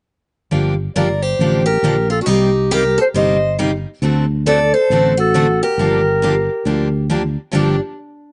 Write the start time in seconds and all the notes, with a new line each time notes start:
0.51 G1 D3 F3 A#3 D4 G4
0.96 G1 D3 F3 A#3 D4 G4 A#4 D5
1.22 G4 C5
1.39 A1 D3 F3 A#3 D4 G4
1.66 G4 A#4
1.83 A#1 D3 F3 A#3 D4 G4
2.10 F4 A4
2.21 D4 F#4
2.26 C2 C3 G3 A#3 D#4 G4
2.71 C3 G3 A#3 D#4 G4 A#4
2.98 A4 C5
3.14 G1 C3 G3 A#3 D#4 G4 C5 D#5
3.59 C3 G3 A#3 D#4 G4
4.02 D2 D3 A3 C4 F#4 A4
4.46 D3 A3 C4 F#4 A4 D5
4.74 A4 C5
4.90 A1 D3 A3 C4 F#4 A4
5.17 F#4 A4
5.34 D3 A3 C4 F#4 A4
5.63 G4 A#4
5.78 G1 D3 F3 A#3 D4 G4
6.22 D3 F3 A#3 D4 G4
6.65 D2 D3 F3 A#3 D4 G4
7.10 D3 F3 A#3 D4 G4
7.52 G1 G2 D3 F3 A#3 D4 G4